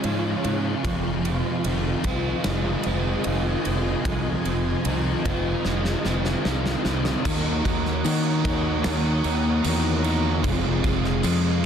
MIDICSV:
0, 0, Header, 1, 6, 480
1, 0, Start_track
1, 0, Tempo, 800000
1, 512, Time_signature, 4, 2, 24, 8
1, 6994, End_track
2, 0, Start_track
2, 0, Title_t, "String machine"
2, 0, Program_c, 0, 50
2, 0, Note_on_c, 0, 65, 78
2, 0, Note_on_c, 0, 73, 76
2, 0, Note_on_c, 0, 80, 88
2, 489, Note_off_c, 0, 80, 0
2, 493, Note_off_c, 0, 73, 0
2, 515, Note_on_c, 0, 80, 91
2, 518, Note_on_c, 0, 75, 77
2, 4333, Note_off_c, 0, 65, 0
2, 4334, Note_off_c, 0, 80, 0
2, 4336, Note_off_c, 0, 75, 0
2, 4348, Note_on_c, 0, 73, 87
2, 4348, Note_on_c, 0, 78, 73
2, 4350, Note_on_c, 0, 87, 94
2, 6247, Note_off_c, 0, 73, 0
2, 6247, Note_off_c, 0, 78, 0
2, 6248, Note_off_c, 0, 87, 0
2, 6272, Note_on_c, 0, 77, 80
2, 6273, Note_on_c, 0, 87, 93
2, 6277, Note_on_c, 0, 68, 89
2, 6994, Note_off_c, 0, 68, 0
2, 6994, Note_off_c, 0, 77, 0
2, 6994, Note_off_c, 0, 87, 0
2, 6994, End_track
3, 0, Start_track
3, 0, Title_t, "Overdriven electric guitar"
3, 0, Program_c, 1, 29
3, 0, Note_on_c, 1, 56, 63
3, 0, Note_on_c, 1, 61, 70
3, 27, Note_on_c, 1, 53, 68
3, 268, Note_on_c, 1, 49, 67
3, 504, Note_on_c, 1, 41, 78
3, 510, Note_off_c, 1, 49, 0
3, 510, Note_off_c, 1, 61, 0
3, 750, Note_on_c, 1, 48, 68
3, 995, Note_off_c, 1, 53, 0
3, 998, Note_on_c, 1, 51, 64
3, 1234, Note_on_c, 1, 60, 83
3, 1472, Note_off_c, 1, 56, 0
3, 1474, Note_on_c, 1, 56, 70
3, 1711, Note_off_c, 1, 41, 0
3, 1711, Note_off_c, 1, 60, 0
3, 1719, Note_on_c, 1, 60, 72
3, 1954, Note_off_c, 1, 48, 0
3, 1956, Note_off_c, 1, 51, 0
3, 1963, Note_on_c, 1, 51, 62
3, 2196, Note_on_c, 1, 48, 65
3, 2440, Note_on_c, 1, 41, 82
3, 2670, Note_off_c, 1, 48, 0
3, 2677, Note_off_c, 1, 56, 0
3, 2677, Note_on_c, 1, 48, 66
3, 2908, Note_off_c, 1, 51, 0
3, 2916, Note_on_c, 1, 51, 74
3, 2919, Note_off_c, 1, 60, 0
3, 3158, Note_on_c, 1, 60, 77
3, 3397, Note_on_c, 1, 56, 63
3, 3630, Note_off_c, 1, 60, 0
3, 3637, Note_on_c, 1, 60, 73
3, 3639, Note_off_c, 1, 41, 0
3, 3866, Note_off_c, 1, 51, 0
3, 3874, Note_on_c, 1, 51, 65
3, 3877, Note_off_c, 1, 48, 0
3, 4114, Note_on_c, 1, 48, 66
3, 4341, Note_off_c, 1, 51, 0
3, 4346, Note_off_c, 1, 48, 0
3, 4349, Note_on_c, 1, 51, 101
3, 4351, Note_on_c, 1, 58, 91
3, 4356, Note_off_c, 1, 56, 0
3, 4357, Note_off_c, 1, 60, 0
3, 4358, Note_on_c, 1, 63, 104
3, 4361, Note_on_c, 1, 66, 98
3, 4364, Note_on_c, 1, 70, 106
3, 4585, Note_off_c, 1, 70, 0
3, 4592, Note_off_c, 1, 66, 0
3, 4592, Note_on_c, 1, 70, 75
3, 4599, Note_on_c, 1, 66, 68
3, 4606, Note_off_c, 1, 63, 0
3, 4608, Note_on_c, 1, 63, 60
3, 4822, Note_off_c, 1, 58, 0
3, 4829, Note_on_c, 1, 58, 85
3, 4831, Note_off_c, 1, 63, 0
3, 4831, Note_off_c, 1, 66, 0
3, 4832, Note_off_c, 1, 51, 0
3, 4834, Note_on_c, 1, 63, 78
3, 4836, Note_off_c, 1, 70, 0
3, 4838, Note_on_c, 1, 66, 74
3, 4843, Note_on_c, 1, 70, 89
3, 5056, Note_off_c, 1, 70, 0
3, 5063, Note_off_c, 1, 66, 0
3, 5063, Note_on_c, 1, 70, 77
3, 5070, Note_on_c, 1, 66, 74
3, 5077, Note_off_c, 1, 63, 0
3, 5080, Note_on_c, 1, 63, 68
3, 5292, Note_off_c, 1, 58, 0
3, 5296, Note_on_c, 1, 51, 93
3, 5299, Note_on_c, 1, 58, 98
3, 5300, Note_off_c, 1, 66, 0
3, 5301, Note_off_c, 1, 63, 0
3, 5303, Note_off_c, 1, 70, 0
3, 5304, Note_on_c, 1, 63, 103
3, 5307, Note_on_c, 1, 66, 96
3, 5310, Note_on_c, 1, 70, 113
3, 5533, Note_off_c, 1, 70, 0
3, 5541, Note_on_c, 1, 70, 78
3, 5544, Note_off_c, 1, 66, 0
3, 5550, Note_off_c, 1, 63, 0
3, 5551, Note_on_c, 1, 66, 71
3, 5552, Note_on_c, 1, 63, 58
3, 5767, Note_off_c, 1, 58, 0
3, 5774, Note_on_c, 1, 58, 67
3, 5780, Note_off_c, 1, 63, 0
3, 5780, Note_off_c, 1, 66, 0
3, 5782, Note_on_c, 1, 63, 82
3, 5783, Note_off_c, 1, 51, 0
3, 5787, Note_off_c, 1, 70, 0
3, 5787, Note_on_c, 1, 66, 88
3, 5794, Note_on_c, 1, 70, 78
3, 6008, Note_off_c, 1, 70, 0
3, 6015, Note_on_c, 1, 70, 80
3, 6019, Note_off_c, 1, 66, 0
3, 6026, Note_on_c, 1, 66, 79
3, 6028, Note_off_c, 1, 63, 0
3, 6030, Note_on_c, 1, 63, 67
3, 6247, Note_off_c, 1, 58, 0
3, 6248, Note_off_c, 1, 70, 0
3, 6253, Note_off_c, 1, 66, 0
3, 6256, Note_on_c, 1, 53, 106
3, 6260, Note_on_c, 1, 56, 96
3, 6264, Note_off_c, 1, 63, 0
3, 6266, Note_on_c, 1, 60, 121
3, 6271, Note_on_c, 1, 65, 116
3, 6491, Note_off_c, 1, 65, 0
3, 6498, Note_on_c, 1, 65, 81
3, 6508, Note_off_c, 1, 60, 0
3, 6511, Note_off_c, 1, 56, 0
3, 6511, Note_on_c, 1, 60, 70
3, 6514, Note_on_c, 1, 56, 56
3, 6737, Note_off_c, 1, 53, 0
3, 6744, Note_off_c, 1, 56, 0
3, 6745, Note_on_c, 1, 53, 76
3, 6746, Note_on_c, 1, 56, 73
3, 6750, Note_off_c, 1, 60, 0
3, 6752, Note_off_c, 1, 65, 0
3, 6753, Note_on_c, 1, 60, 93
3, 6759, Note_on_c, 1, 65, 95
3, 6973, Note_off_c, 1, 65, 0
3, 6987, Note_off_c, 1, 60, 0
3, 6994, Note_off_c, 1, 53, 0
3, 6994, Note_off_c, 1, 56, 0
3, 6994, End_track
4, 0, Start_track
4, 0, Title_t, "Distorted electric guitar"
4, 0, Program_c, 2, 30
4, 0, Note_on_c, 2, 56, 81
4, 0, Note_on_c, 2, 61, 58
4, 27, Note_on_c, 2, 65, 73
4, 261, Note_off_c, 2, 61, 0
4, 268, Note_on_c, 2, 61, 62
4, 510, Note_off_c, 2, 61, 0
4, 513, Note_on_c, 2, 41, 68
4, 995, Note_on_c, 2, 60, 74
4, 1233, Note_off_c, 2, 65, 0
4, 1236, Note_on_c, 2, 65, 76
4, 1475, Note_off_c, 2, 56, 0
4, 1477, Note_on_c, 2, 56, 83
4, 1711, Note_off_c, 2, 60, 0
4, 1715, Note_off_c, 2, 41, 0
4, 1718, Note_on_c, 2, 60, 61
4, 1950, Note_off_c, 2, 65, 0
4, 1958, Note_on_c, 2, 65, 64
4, 2195, Note_off_c, 2, 60, 0
4, 2202, Note_on_c, 2, 60, 74
4, 2440, Note_on_c, 2, 41, 68
4, 2678, Note_off_c, 2, 56, 0
4, 2908, Note_off_c, 2, 60, 0
4, 2915, Note_on_c, 2, 60, 72
4, 3150, Note_off_c, 2, 65, 0
4, 3157, Note_on_c, 2, 65, 73
4, 3399, Note_on_c, 2, 56, 80
4, 3631, Note_off_c, 2, 60, 0
4, 3638, Note_on_c, 2, 60, 63
4, 3639, Note_off_c, 2, 41, 0
4, 3869, Note_off_c, 2, 65, 0
4, 3876, Note_on_c, 2, 65, 62
4, 4108, Note_off_c, 2, 60, 0
4, 4115, Note_on_c, 2, 60, 69
4, 4356, Note_off_c, 2, 60, 0
4, 4356, Note_off_c, 2, 65, 0
4, 4356, Note_on_c, 2, 51, 95
4, 4358, Note_off_c, 2, 56, 0
4, 4363, Note_on_c, 2, 58, 90
4, 4370, Note_on_c, 2, 63, 102
4, 4593, Note_off_c, 2, 63, 0
4, 4596, Note_on_c, 2, 63, 61
4, 4601, Note_off_c, 2, 58, 0
4, 4608, Note_on_c, 2, 58, 52
4, 4824, Note_off_c, 2, 51, 0
4, 4832, Note_off_c, 2, 58, 0
4, 4832, Note_on_c, 2, 51, 78
4, 4839, Note_on_c, 2, 58, 81
4, 4844, Note_off_c, 2, 63, 0
4, 4846, Note_on_c, 2, 63, 80
4, 5070, Note_off_c, 2, 63, 0
4, 5073, Note_on_c, 2, 63, 83
4, 5078, Note_off_c, 2, 58, 0
4, 5086, Note_on_c, 2, 58, 67
4, 5312, Note_off_c, 2, 51, 0
4, 5786, Note_on_c, 2, 51, 75
4, 5789, Note_off_c, 2, 58, 0
4, 5796, Note_on_c, 2, 58, 74
4, 5798, Note_off_c, 2, 63, 0
4, 5801, Note_on_c, 2, 63, 80
4, 6026, Note_off_c, 2, 63, 0
4, 6028, Note_on_c, 2, 63, 78
4, 6035, Note_off_c, 2, 58, 0
4, 6042, Note_on_c, 2, 58, 60
4, 6253, Note_off_c, 2, 51, 0
4, 6262, Note_off_c, 2, 58, 0
4, 6265, Note_on_c, 2, 41, 87
4, 6272, Note_on_c, 2, 48, 96
4, 6277, Note_on_c, 2, 53, 112
4, 6283, Note_off_c, 2, 63, 0
4, 6497, Note_off_c, 2, 53, 0
4, 6504, Note_on_c, 2, 53, 73
4, 6510, Note_off_c, 2, 48, 0
4, 6518, Note_on_c, 2, 48, 52
4, 6738, Note_off_c, 2, 41, 0
4, 6745, Note_on_c, 2, 41, 91
4, 6746, Note_off_c, 2, 48, 0
4, 6751, Note_off_c, 2, 53, 0
4, 6754, Note_on_c, 2, 48, 78
4, 6759, Note_on_c, 2, 53, 91
4, 6984, Note_off_c, 2, 53, 0
4, 6994, Note_off_c, 2, 41, 0
4, 6994, Note_off_c, 2, 48, 0
4, 6994, End_track
5, 0, Start_track
5, 0, Title_t, "Fingered electric bass"
5, 0, Program_c, 3, 33
5, 26, Note_on_c, 3, 44, 81
5, 197, Note_off_c, 3, 44, 0
5, 268, Note_on_c, 3, 44, 83
5, 438, Note_off_c, 3, 44, 0
5, 506, Note_on_c, 3, 29, 84
5, 846, Note_off_c, 3, 29, 0
5, 992, Note_on_c, 3, 29, 87
5, 1161, Note_off_c, 3, 29, 0
5, 1226, Note_on_c, 3, 36, 88
5, 1398, Note_off_c, 3, 36, 0
5, 1476, Note_on_c, 3, 29, 93
5, 1645, Note_off_c, 3, 29, 0
5, 1718, Note_on_c, 3, 29, 87
5, 1886, Note_off_c, 3, 29, 0
5, 1958, Note_on_c, 3, 29, 85
5, 2126, Note_off_c, 3, 29, 0
5, 2198, Note_on_c, 3, 29, 81
5, 2366, Note_off_c, 3, 29, 0
5, 2430, Note_on_c, 3, 36, 79
5, 2601, Note_off_c, 3, 36, 0
5, 2674, Note_on_c, 3, 29, 74
5, 2844, Note_off_c, 3, 29, 0
5, 2913, Note_on_c, 3, 36, 90
5, 3083, Note_off_c, 3, 36, 0
5, 3151, Note_on_c, 3, 29, 89
5, 3322, Note_off_c, 3, 29, 0
5, 3393, Note_on_c, 3, 29, 95
5, 3563, Note_off_c, 3, 29, 0
5, 3633, Note_on_c, 3, 29, 87
5, 3804, Note_off_c, 3, 29, 0
5, 3874, Note_on_c, 3, 36, 83
5, 4044, Note_off_c, 3, 36, 0
5, 4112, Note_on_c, 3, 36, 86
5, 4283, Note_off_c, 3, 36, 0
5, 4352, Note_on_c, 3, 39, 82
5, 4584, Note_off_c, 3, 39, 0
5, 4590, Note_on_c, 3, 39, 81
5, 4823, Note_off_c, 3, 39, 0
5, 4827, Note_on_c, 3, 51, 91
5, 5062, Note_off_c, 3, 51, 0
5, 5069, Note_on_c, 3, 39, 87
5, 5302, Note_off_c, 3, 39, 0
5, 5318, Note_on_c, 3, 39, 104
5, 5546, Note_off_c, 3, 39, 0
5, 5551, Note_on_c, 3, 39, 106
5, 5782, Note_off_c, 3, 39, 0
5, 5791, Note_on_c, 3, 40, 87
5, 6251, Note_off_c, 3, 40, 0
5, 6262, Note_on_c, 3, 29, 94
5, 6496, Note_off_c, 3, 29, 0
5, 6507, Note_on_c, 3, 29, 86
5, 6737, Note_off_c, 3, 29, 0
5, 6745, Note_on_c, 3, 41, 86
5, 6976, Note_off_c, 3, 41, 0
5, 6994, End_track
6, 0, Start_track
6, 0, Title_t, "Drums"
6, 22, Note_on_c, 9, 51, 83
6, 82, Note_off_c, 9, 51, 0
6, 266, Note_on_c, 9, 51, 66
6, 326, Note_off_c, 9, 51, 0
6, 507, Note_on_c, 9, 36, 96
6, 509, Note_on_c, 9, 51, 80
6, 567, Note_off_c, 9, 36, 0
6, 569, Note_off_c, 9, 51, 0
6, 750, Note_on_c, 9, 51, 64
6, 810, Note_off_c, 9, 51, 0
6, 987, Note_on_c, 9, 51, 86
6, 1047, Note_off_c, 9, 51, 0
6, 1224, Note_on_c, 9, 51, 67
6, 1227, Note_on_c, 9, 36, 72
6, 1284, Note_off_c, 9, 51, 0
6, 1287, Note_off_c, 9, 36, 0
6, 1465, Note_on_c, 9, 51, 87
6, 1466, Note_on_c, 9, 38, 103
6, 1525, Note_off_c, 9, 51, 0
6, 1526, Note_off_c, 9, 38, 0
6, 1701, Note_on_c, 9, 51, 69
6, 1761, Note_off_c, 9, 51, 0
6, 1944, Note_on_c, 9, 51, 91
6, 2004, Note_off_c, 9, 51, 0
6, 2191, Note_on_c, 9, 51, 71
6, 2251, Note_off_c, 9, 51, 0
6, 2431, Note_on_c, 9, 36, 110
6, 2433, Note_on_c, 9, 51, 89
6, 2491, Note_off_c, 9, 36, 0
6, 2493, Note_off_c, 9, 51, 0
6, 2672, Note_on_c, 9, 51, 64
6, 2732, Note_off_c, 9, 51, 0
6, 2909, Note_on_c, 9, 51, 92
6, 2969, Note_off_c, 9, 51, 0
6, 3152, Note_on_c, 9, 51, 69
6, 3153, Note_on_c, 9, 36, 78
6, 3212, Note_off_c, 9, 51, 0
6, 3213, Note_off_c, 9, 36, 0
6, 3389, Note_on_c, 9, 38, 62
6, 3449, Note_off_c, 9, 38, 0
6, 3511, Note_on_c, 9, 38, 62
6, 3571, Note_off_c, 9, 38, 0
6, 3629, Note_on_c, 9, 38, 67
6, 3689, Note_off_c, 9, 38, 0
6, 3749, Note_on_c, 9, 38, 61
6, 3809, Note_off_c, 9, 38, 0
6, 3872, Note_on_c, 9, 38, 91
6, 3931, Note_off_c, 9, 38, 0
6, 3994, Note_on_c, 9, 38, 72
6, 4054, Note_off_c, 9, 38, 0
6, 4110, Note_on_c, 9, 38, 83
6, 4170, Note_off_c, 9, 38, 0
6, 4230, Note_on_c, 9, 38, 87
6, 4290, Note_off_c, 9, 38, 0
6, 4352, Note_on_c, 9, 36, 107
6, 4354, Note_on_c, 9, 49, 112
6, 4354, Note_on_c, 9, 57, 83
6, 4412, Note_off_c, 9, 36, 0
6, 4414, Note_off_c, 9, 49, 0
6, 4414, Note_off_c, 9, 57, 0
6, 4592, Note_on_c, 9, 36, 88
6, 4593, Note_on_c, 9, 57, 64
6, 4652, Note_off_c, 9, 36, 0
6, 4653, Note_off_c, 9, 57, 0
6, 4713, Note_on_c, 9, 38, 31
6, 4773, Note_off_c, 9, 38, 0
6, 4827, Note_on_c, 9, 54, 91
6, 4833, Note_on_c, 9, 57, 98
6, 4887, Note_off_c, 9, 54, 0
6, 4893, Note_off_c, 9, 57, 0
6, 5070, Note_on_c, 9, 36, 96
6, 5070, Note_on_c, 9, 57, 60
6, 5130, Note_off_c, 9, 36, 0
6, 5130, Note_off_c, 9, 57, 0
6, 5305, Note_on_c, 9, 57, 88
6, 5306, Note_on_c, 9, 38, 113
6, 5365, Note_off_c, 9, 57, 0
6, 5366, Note_off_c, 9, 38, 0
6, 5545, Note_on_c, 9, 57, 66
6, 5605, Note_off_c, 9, 57, 0
6, 5786, Note_on_c, 9, 57, 94
6, 5790, Note_on_c, 9, 54, 110
6, 5846, Note_off_c, 9, 57, 0
6, 5850, Note_off_c, 9, 54, 0
6, 6026, Note_on_c, 9, 57, 64
6, 6086, Note_off_c, 9, 57, 0
6, 6264, Note_on_c, 9, 57, 85
6, 6265, Note_on_c, 9, 36, 98
6, 6324, Note_off_c, 9, 57, 0
6, 6325, Note_off_c, 9, 36, 0
6, 6504, Note_on_c, 9, 57, 59
6, 6505, Note_on_c, 9, 36, 86
6, 6564, Note_off_c, 9, 57, 0
6, 6565, Note_off_c, 9, 36, 0
6, 6626, Note_on_c, 9, 38, 34
6, 6686, Note_off_c, 9, 38, 0
6, 6740, Note_on_c, 9, 54, 106
6, 6745, Note_on_c, 9, 57, 84
6, 6800, Note_off_c, 9, 54, 0
6, 6805, Note_off_c, 9, 57, 0
6, 6994, End_track
0, 0, End_of_file